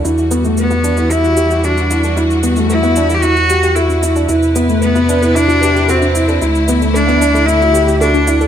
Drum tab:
SH |xxxxxxxxxxxxxxxx|xxxxxxxxxxxxxxxx|xxxxxxxxxxxxxxxx|xxxxxxxxxxxxxxxx|